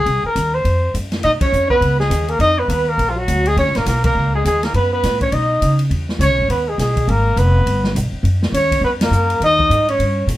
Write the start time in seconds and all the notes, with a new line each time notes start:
Already playing: G#4
0.06 C2, ride
0.24 A#4, muted upright bass stroke
0.36 D#2, hi-hat pedal, ride
0.54 C5
0.65 F2, ride
0.94 F#2, hi-hat pedal, ride
1.12 snare, ride
1.23 A#2 D#4 D#5, ride
1.41 C#4 C#5, muted upright bass stroke, kick, ride
1.52 F2, hi-hat pedal
1.70 B3 B4, kick
1.81 C#2, ride
2.00 G#3 G#4, snare
2.10 D#2, hi-hat pedal, ride
2.28 A#3 A#4, ride
2.39 F2 D#4 D#5, ride
2.59 B3 B4
2.68 D#2 A#3 B3 A#4 B4, hi-hat pedal, ride
2.88 A#3 A#4
2.98 A#1, ride
3.10 F3 F4
3.17 F#3 F#4
3.28 D2, hi-hat pedal, ride
3.45 G#3 G#4, ride
3.57 D#2 C#4 C#5, ride
3.67 C#2
3.75 A#1 A#3 A#4, snare, ride
3.86 B1 A#3 A#4, snare, hi-hat pedal, ride
4.04 A#3 A#4, kick, ride
4.15 C#2
4.35 G#3 G#4
4.45 D#2 G#3 G#4, hi-hat pedal, ride
4.63 A#3 A#4, snare, ride
4.74 F#2 B3 B4, ride
4.93 B3 B4
5.03 A2, snare, hi-hat pedal, ride
5.21 C#4 C#5, kick, ride
5.32 B2 D#4 D#5, ride
5.62 C#3, hi-hat pedal, ride
5.79 ride
5.90 E2, ride
6.09 snare
6.19 C#2 C#4 C#5, hi-hat pedal, ride
6.29 B1
6.39 G#1
6.48 D#2 B3 B4, ride
6.68 G#3 G#4
6.78 B1 G#3 G#4, snare, hi-hat pedal, ride
6.97 kick, ride
7.08 G#1 A#3 A#4, ride
7.36 F1 B3 B4, hi-hat pedal, ride
7.66 G1, ride
7.84 snare
7.95 B1, hi-hat pedal, ride
8.12 muted upright bass stroke
8.23 F#2, ride
8.42 snare
8.52 D#2 C#4 C#5, hi-hat pedal, ride
8.72 kick, ride
8.81 F2 B3 B4
9.01 A#3 A#4, snare, ride
9.11 F#2, hi-hat pedal
9.30 ride
9.40 D#2 D#4 D#5, ride
9.59 kick
9.70 G#2, hi-hat pedal, ride
9.88 C#4 C#5, ride
9.99 G2, ride
10.27 A#2, hi-hat pedal, ride